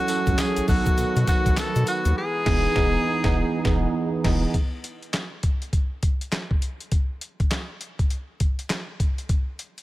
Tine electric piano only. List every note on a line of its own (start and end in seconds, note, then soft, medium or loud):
0.00 0.08 F#3 medium
0.00 0.08 C#4 medium
0.00 0.09 E4 medium
0.00 0.09 A4 medium
0.08 0.66 F#3 medium
0.08 0.68 C#4 medium
0.08 0.68 E4 medium
0.08 0.67 A4 medium
0.67 1.64 F#3 medium
0.67 1.64 B3 medium
0.67 1.64 D#4 medium
0.67 1.65 A4 medium
2.46 2.67 E3 medium
2.46 2.67 B3 loud
2.46 2.68 D#4 loud
2.46 2.68 G#4 loud
2.75 2.97 E3 loud
2.75 2.97 B3 loud
2.75 2.97 D#4 loud
2.75 2.98 G#4 loud
3.24 3.43 E3 loud
3.24 3.43 B3 medium
3.24 3.43 D#4 loud
3.24 3.44 G#4 loud
3.64 3.86 E3 medium
3.64 3.86 B3 medium
3.64 3.87 D#4 medium
3.64 3.87 G#4 medium
4.24 4.45 E3 medium
4.24 4.46 B3 medium
4.24 4.46 D#4 medium
4.24 4.46 G#4 medium